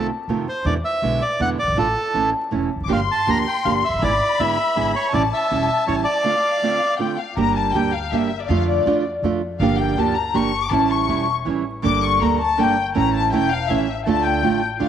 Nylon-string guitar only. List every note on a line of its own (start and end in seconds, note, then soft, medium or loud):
0.29 0.46 C3 medium
0.29 0.46 D#3 soft
0.29 0.46 A3 medium
0.29 0.47 C4 medium
0.29 0.46 F4 medium
0.65 0.75 B2 medium
0.65 0.75 D3 medium
0.65 0.75 G#3 medium
0.65 0.75 B3 medium
0.65 0.75 E4 medium
1.03 1.20 B2 medium
1.03 1.20 D3 medium
1.03 1.20 G#3 medium
1.03 1.20 B3 medium
1.03 1.20 E4 medium
1.39 1.57 B2 medium
1.39 1.57 D3 medium
1.39 1.57 G#3 medium
1.39 1.57 B3 medium
1.39 1.57 E4 medium
1.77 1.86 D3 medium
1.77 1.86 A3 medium
1.77 1.86 D4 medium
1.77 1.87 F4 medium
2.14 2.31 E3 medium
2.14 2.31 A3 medium
2.14 2.32 C#4 medium
2.14 2.32 E4 medium
2.51 2.69 E3 soft
2.51 2.69 A3 medium
2.51 2.69 C#4 medium
2.51 2.69 E4 medium
2.88 2.98 D3 medium
2.88 2.98 F3 medium
2.88 2.98 A#3 medium
2.88 2.98 D4 medium
2.88 2.99 G4 medium
3.27 3.44 D3 medium
3.27 3.44 F3 medium
3.27 3.45 A#3 medium
3.27 3.45 D4 medium
3.27 3.45 G4 medium
3.64 3.82 D3 medium
3.64 3.82 F3 medium
3.64 3.82 A#3 soft
3.64 3.82 D4 medium
3.64 3.82 G4 medium
4.01 4.11 D3 medium
4.01 4.11 G#3 medium
4.01 4.11 B3 medium
4.01 4.11 E4 medium
4.01 4.11 G#4 medium
4.39 4.56 D3 medium
4.39 4.57 G#3 medium
4.39 4.57 B3 medium
4.39 4.57 E4 medium
4.39 4.57 G#4 medium
4.76 4.93 D3 soft
4.76 4.93 G#3 medium
4.76 4.93 B3 medium
4.76 4.94 E4 medium
4.76 4.94 G#4 medium
5.13 5.22 E3 medium
5.13 5.22 G3 medium
5.13 5.22 C#4 medium
5.13 5.23 E4 medium
5.50 5.67 E3 medium
5.50 5.68 G3 medium
5.50 5.68 C#4 medium
5.50 5.68 E4 medium
5.87 6.04 E3 soft
5.87 6.04 G3 medium
5.87 6.05 C#4 medium
5.87 6.05 E4 medium
6.24 6.33 D3 medium
6.24 6.33 A3 medium
6.24 6.34 C4 medium
6.24 6.34 F4 medium
6.62 6.79 D3 medium
6.62 6.79 A3 medium
6.62 6.79 C4 medium
6.62 6.80 F4 medium
6.99 7.16 D3 soft
6.99 7.16 A3 medium
6.99 7.17 C4 medium
6.99 7.17 F4 medium
7.36 7.73 D3 medium
7.36 7.73 G3 medium
7.36 7.73 A#3 medium
7.36 7.74 D4 medium
7.36 7.74 G4 medium
7.74 7.91 D3 medium
7.74 7.92 G3 medium
7.74 7.92 A#3 medium
7.74 7.92 D4 medium
7.74 7.92 G4 medium
8.12 8.29 D3 medium
8.12 8.29 G3 medium
8.12 8.29 A#3 medium
8.12 8.29 D4 medium
8.12 8.30 G4 medium
8.48 8.85 D3 medium
8.48 8.86 A3 medium
8.48 8.86 D4 medium
8.48 8.86 F4 medium
8.86 9.03 D3 medium
8.86 9.03 A3 medium
8.86 9.03 D4 medium
8.86 9.03 F4 medium
9.23 9.40 D3 medium
9.23 9.40 A3 medium
9.23 9.41 D4 medium
9.23 9.41 F4 medium
9.60 9.95 D3 medium
9.60 9.96 F3 medium
9.60 9.96 A#3 medium
9.60 9.97 D4 medium
9.60 9.97 G4 medium
9.97 10.14 D3 medium
9.97 10.14 F3 medium
9.97 10.14 A#3 medium
9.97 10.15 D4 medium
9.97 10.15 G4 medium
10.34 10.51 D3 medium
10.34 10.51 F3 medium
10.34 10.51 A#3 medium
10.34 10.51 D4 medium
10.34 10.51 G4 medium
10.70 11.07 E3 medium
10.70 11.07 G3 medium
10.70 11.08 C#4 medium
10.70 11.08 E4 medium
11.08 11.25 E3 medium
11.08 11.26 G3 medium
11.08 11.26 C#4 medium
11.08 11.26 E4 medium
11.45 11.63 E3 medium
11.45 11.63 G3 medium
11.45 11.63 C#4 medium
11.45 11.63 E4 medium
11.82 12.19 D3 medium
11.82 12.20 G3 medium
11.82 12.20 A#3 medium
11.82 12.21 D4 medium
11.82 12.21 A4 medium
12.21 12.38 D3 medium
12.21 12.38 G3 medium
12.21 12.38 A#3 medium
12.21 12.38 D4 medium
12.21 12.39 A4 medium
12.57 12.75 D3 medium
12.57 12.75 G3 medium
12.57 12.75 A#3 medium
12.57 12.75 D4 medium
12.57 12.75 A4 medium
12.95 13.31 E3 medium
12.95 13.31 A3 medium
12.95 13.32 C#4 medium
12.95 13.32 E4 medium
13.32 13.49 E3 medium
13.32 13.49 A3 medium
13.32 13.50 C#4 medium
13.32 13.50 E4 medium
13.69 13.86 E3 medium
13.69 13.86 A3 medium
13.69 13.86 C#4 medium
13.69 13.87 E4 medium
14.06 14.41 D3 medium
14.06 14.42 A3 medium
14.06 14.43 D4 medium
14.06 14.44 F4 medium
14.43 14.60 D3 medium
14.43 14.60 A3 medium
14.43 14.61 D4 medium
14.43 14.61 F4 medium
14.79 14.88 D3 medium
14.79 14.88 A3 medium
14.79 14.88 D4 medium
14.79 14.88 F4 medium